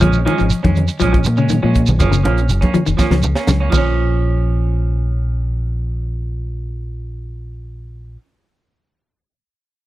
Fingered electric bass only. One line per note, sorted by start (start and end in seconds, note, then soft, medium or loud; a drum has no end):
0.03 0.26 A#1 loud
0.41 0.52 G#1 medium
0.64 0.88 F2 medium
1.02 1.25 A#1 medium
1.27 1.61 A#2 medium
1.64 1.87 A#2 medium
1.88 1.99 A#1 medium
2.00 2.23 F#1 loud
2.26 2.49 A#1 medium
2.51 2.62 F#1 medium
2.75 muted fingered electric bass stroke soft
2.88 2.98 F1 medium
3.00 muted fingered electric bass stroke soft
3.11 3.34 C#2 medium
3.48 3.73 C#2 medium
3.73 8.16 A#1 medium